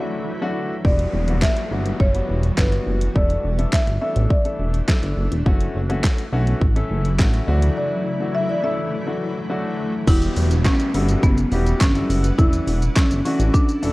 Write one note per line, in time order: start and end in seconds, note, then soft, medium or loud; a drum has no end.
0.00 0.82 D3 medium
0.00 0.81 E3 medium
0.00 0.81 F#3 medium
0.00 0.29 A3 medium
0.00 0.82 A3 medium
0.00 0.29 D4 medium
0.00 0.29 E4 medium
0.00 0.81 E4 medium
0.00 0.29 F#4 medium
0.00 0.52 E5 loud
0.41 0.72 A3 medium
0.41 0.72 D4 medium
0.41 0.72 E4 medium
0.41 0.72 F#4 loud
0.85 1.06 E1 loud
0.85 3.13 E3 medium
0.85 1.16 G3 medium
0.85 3.13 G3 medium
0.85 3.13 B3 medium
0.85 1.16 B3 medium
0.85 1.16 E4 medium
0.85 3.13 F#4 medium
0.85 1.16 F#4 medium
0.85 1.44 D5 loud
0.85 kick loud
0.85 downlifter medium
0.99 closed hi-hat medium
1.14 1.46 E1 loud
1.28 1.59 G3 medium
1.28 1.59 B3 medium
1.28 1.59 E4 medium
1.28 1.59 F#4 medium
1.28 closed hi-hat medium
1.42 2.02 E5 loud
1.42 kick loud
1.42 snare medium
1.42 clap loud
1.57 closed hi-hat medium
1.71 1.93 G1 medium
1.71 2.02 G3 medium
1.71 2.02 B3 medium
1.71 2.02 E4 medium
1.71 2.02 F#4 medium
1.86 closed hi-hat medium
2.00 2.22 F#1 medium
2.00 2.54 C#5 loud
2.00 kick loud
2.14 2.45 G3 medium
2.14 2.45 B3 medium
2.14 2.45 E4 medium
2.14 2.45 F#4 medium
2.14 closed hi-hat medium
2.29 2.51 E1 medium
2.43 closed hi-hat medium
2.57 2.80 G1 medium
2.57 2.99 G3 medium
2.57 2.99 B3 medium
2.57 2.99 E4 medium
2.57 2.99 F#4 medium
2.57 2.98 B4 medium
2.57 kick loud
2.57 snare medium
2.57 clap loud
2.72 closed hi-hat soft
2.87 3.08 F#1 medium
3.01 closed hi-hat medium
3.15 3.37 E1 loud
3.15 10.04 E3 medium
3.15 3.46 A3 medium
3.15 5.44 A3 medium
3.15 3.46 D4 medium
3.15 5.44 D4 medium
3.15 3.46 E4 medium
3.15 3.46 A4 medium
3.15 3.75 D5 loud
3.15 kick loud
3.30 closed hi-hat soft
3.44 3.66 E1 loud
3.58 3.89 A3 medium
3.58 3.90 D4 medium
3.58 3.90 E4 medium
3.58 3.90 A4 medium
3.58 closed hi-hat medium
3.73 4.01 E5 loud
3.73 kick loud
3.73 snare medium
3.73 clap loud
3.87 3.98 G1 medium
3.87 closed hi-hat medium
4.02 4.33 A3 medium
4.02 4.33 D4 medium
4.02 4.33 E4 medium
4.02 4.33 A4 medium
4.02 4.32 E5 medium
4.16 4.27 A1 medium
4.16 closed hi-hat medium
4.30 5.13 D5 medium
4.30 kick loud
4.45 4.76 A3 medium
4.45 4.76 D4 medium
4.45 4.76 E4 medium
4.45 4.76 A4 medium
4.45 closed hi-hat medium
4.59 4.81 E1 medium
4.74 closed hi-hat medium
4.88 5.30 A3 medium
4.88 5.30 D4 medium
4.88 5.30 E4 medium
4.88 5.30 A4 medium
4.88 kick loud
4.88 snare loud
4.88 clap loud
5.03 5.14 G1 medium
5.03 closed hi-hat medium
5.17 5.28 F#1 medium
5.32 5.43 E1 medium
5.32 closed hi-hat medium
5.46 5.68 F#1 loud
5.46 7.46 C#3 medium
5.46 10.04 F#3 medium
5.46 5.77 A3 medium
5.46 7.46 A3 medium
5.46 5.77 C#4 medium
5.46 5.77 E4 medium
5.46 10.04 E4 medium
5.46 5.77 F#4 loud
5.46 kick loud
5.46 swell medium
5.60 closed hi-hat medium
5.75 6.08 F#1 loud
5.89 6.20 A3 medium
5.89 6.20 C#4 medium
5.89 6.20 E4 medium
5.89 6.20 F#4 medium
5.89 closed hi-hat medium
6.04 kick loud
6.04 snare medium
6.04 clap loud
6.18 closed hi-hat medium
6.32 6.54 B1 medium
6.32 6.63 A3 medium
6.32 6.63 C#4 medium
6.32 6.64 E4 medium
6.32 6.64 F#4 loud
6.47 closed hi-hat medium
6.61 6.83 A1 medium
6.61 kick loud
6.76 7.07 A3 medium
6.76 7.07 C#4 medium
6.76 7.07 E4 medium
6.76 7.07 A4 loud
6.76 closed hi-hat medium
6.90 7.21 F#1 medium
7.05 closed hi-hat medium
7.19 7.41 A1 medium
7.19 7.46 A3 medium
7.19 7.48 C#4 medium
7.19 7.46 E4 medium
7.19 7.46 F#4 loud
7.19 kick loud
7.19 snare loud
7.19 clap loud
7.34 closed hi-hat medium
7.47 7.70 D2 medium
7.47 10.05 D3 medium
7.47 8.05 A3 loud
7.47 10.05 A3 medium
7.47 8.06 D4 medium
7.47 8.06 E4 medium
7.47 8.06 F#4 loud
7.62 closed hi-hat medium
7.77 8.36 D5 loud
8.20 8.51 A3 medium
8.20 8.51 D4 medium
8.20 8.51 E4 medium
8.20 8.51 F#4 medium
8.35 8.49 E5 loud
8.49 8.64 D5 loud
8.63 8.94 A3 medium
8.63 8.94 D4 medium
8.63 8.94 E4 medium
8.63 8.94 A4 medium
8.63 9.46 E5 loud
9.06 9.37 A3 medium
9.06 9.38 D4 medium
9.06 9.38 E4 medium
9.06 9.38 F#4 medium
9.50 9.91 A3 medium
9.50 9.91 D4 medium
9.50 9.91 E4 medium
9.50 9.91 F#4 medium
10.07 10.30 E1 loud
10.07 10.49 G3 medium
10.07 12.36 G3 medium
10.07 10.49 B3 medium
10.07 10.49 E4 medium
10.07 13.93 E4 medium
10.07 10.67 E4 loud
10.07 10.49 F#4 medium
10.07 10.49 G4 medium
10.07 12.36 B4 medium
10.07 12.36 F#5 medium
10.07 kick loud
10.07 crash loud
10.07 downlifter medium
10.07 shaker medium
10.22 closed hi-hat medium
10.22 shaker medium
10.37 10.69 E1 loud
10.37 open hi-hat medium
10.37 shaker medium
10.51 closed hi-hat medium
10.51 shaker medium
10.65 10.86 G3 medium
10.65 10.86 B3 medium
10.65 11.25 C#4 loud
10.65 10.86 E4 medium
10.65 10.86 F#4 medium
10.65 10.86 G4 medium
10.65 kick loud
10.65 snare medium
10.65 clap loud
10.65 clap medium
10.65 shaker medium
10.80 closed hi-hat medium
10.80 shaker medium
10.94 11.16 G1 medium
10.94 11.35 G3 medium
10.94 11.36 B3 medium
10.94 11.36 E4 medium
10.94 11.36 F#4 medium
10.94 11.36 A4 medium
10.94 open hi-hat medium
10.94 shaker medium
11.09 closed hi-hat medium
11.09 shaker medium
11.23 11.45 F#1 loud
11.23 11.83 B3 loud
11.23 kick loud
11.23 shaker medium
11.38 closed hi-hat medium
11.38 shaker medium
11.52 11.74 E1 medium
11.52 11.83 G3 medium
11.52 11.83 B3 medium
11.52 11.83 E4 medium
11.52 11.83 F#4 medium
11.52 11.83 G4 medium
11.52 open hi-hat medium
11.52 shaker medium
11.67 closed hi-hat medium
11.67 shaker medium
11.81 12.03 G1 medium
11.81 12.21 C#4 loud
11.81 kick loud
11.81 snare loud
11.81 clap loud
11.81 clap medium
11.81 shaker medium
11.95 12.26 G3 medium
11.95 12.26 B3 medium
11.95 12.26 E4 medium
11.95 12.26 F#4 medium
11.95 12.26 A4 medium
11.95 closed hi-hat medium
11.95 shaker medium
12.10 12.31 F#1 medium
12.10 open hi-hat medium
12.10 shaker medium
12.24 closed hi-hat medium
12.24 shaker medium
12.38 12.60 E1 loud
12.38 12.80 E3 medium
12.38 12.80 A3 medium
12.38 12.80 D4 medium
12.38 12.98 E4 loud
12.38 12.80 E4 medium
12.38 13.93 A4 medium
12.38 12.80 A4 medium
12.38 13.93 D5 medium
12.38 13.93 A5 medium
12.38 kick loud
12.38 shaker medium
12.53 closed hi-hat medium
12.53 shaker medium
12.67 12.89 E1 loud
12.67 open hi-hat medium
12.67 shaker medium
12.82 closed hi-hat medium
12.82 shaker medium
12.96 13.17 E3 medium
12.96 13.17 A3 medium
12.96 13.24 C#4 loud
12.96 13.17 D4 medium
12.96 13.17 E4 medium
12.96 13.17 A4 medium
12.96 kick loud
12.96 snare medium
12.96 clap medium
12.96 clap loud
12.96 shaker medium
13.11 13.22 G1 medium
13.11 closed hi-hat medium
13.11 shaker medium
13.25 13.66 E3 medium
13.25 13.66 A3 medium
13.25 13.55 C#4 medium
13.25 13.66 D4 medium
13.25 13.66 E4 medium
13.25 13.66 F#4 medium
13.25 open hi-hat medium
13.25 shaker medium
13.39 13.50 A1 medium
13.39 closed hi-hat medium
13.39 shaker medium
13.54 13.93 D4 loud
13.54 kick loud
13.54 shaker medium
13.69 closed hi-hat medium
13.69 shaker medium
13.82 13.93 E1 medium
13.82 13.93 E3 medium
13.82 13.93 A3 medium
13.82 13.93 D4 medium
13.82 13.93 E4 medium
13.82 13.93 A4 medium
13.82 open hi-hat medium
13.82 shaker medium